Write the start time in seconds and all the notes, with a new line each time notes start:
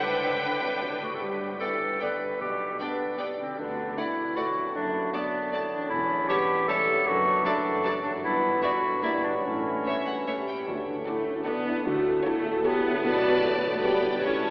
0.00 G1 G2 D4 B4 G5
0.20 D3
0.40 D3 G4
0.61 C3 B4
0.81 B2 G4
1.02 G2 A2 D4 F#4
1.09 D4
1.13 G4 A4
1.17 G3 B4
1.22 G1 G2 G4
1.60 E3 B3 A4 D5 G5
2.00 D3 B3 B4 D5 G5
2.24 B2
2.28 D4
2.32 G4
2.40 B1 B2 G3 G4
2.79 B3 D4 D5 G5
3.18 G3 B3 D5 G5
3.39 D3 C4
3.45 D4
3.50 F#4
3.54 A4
3.58 D2 D3 B3 D4
3.97 A3 E4 D5 F#5
4.36 F#3 A3 F#4 D5 F#5
4.57 F#2
4.62 D4
4.66 A4
4.75 F#1 F#2 A3 D4
5.12 A3 B3 D4 D5 A5
5.53 A3 D5 A5
5.72 E2 D4
5.77 C#4
5.82 G4
5.86 E4 A4
5.91 E1 E2 C#4
6.28 G3 B3 G4 C#5 A5
6.68 G3 A3 A4 C#5 A5
6.89 F#2
6.93 D4
6.98 F#4
7.03 A4
7.07 F#1 F#2 B3 F#4
7.45 F#3 A3 D4 D5 A5
7.84 F#3 D5 A5
8.03 G2 D4
8.10 D4
8.14 E4
8.19 B4
8.23 G1 G2 B3 E4
8.62 B3 F#4 D5 E5
8.85 G2
8.90 D4
8.95 E4
8.99 A#3 E4 A#4 D5 E5
9.03 G1 G2 G3
9.24 A2 D4
9.31 C#4
9.35 E4
9.40 C#4 A4
9.44 A1 A2 E3
9.85 A3 C#5 E5
10.06 A4 F#5
10.27 A3 G4 C#5 E5
10.48 G5
10.68 D2 D3 F#4
10.87 A3 D4
11.07 A3 E4 F#4 A4 D5 F#5
11.26 C#4 A4
11.46 B3 D4 F#4 A4 D5 F#5
11.66 D4 E4
11.85 D2 D3 A3 F#4
12.06 A3
12.25 A3 E4 A4 C#5 A5
12.45 A4
12.65 B3 E4 G4 A4 C#5 A5
12.85 C#4 E4
13.03 B1 B2 F#4 B4 D5 A5
13.23 F#3
13.43 A1 A2 A3 D4 E4
13.63 A4
13.73 D4
13.81 G1 G2 B3 G4 B4 D5 G5
14.02 D4 G4
14.21 A1 A2 C#4 E4 A4 C#5 A5
14.41 E3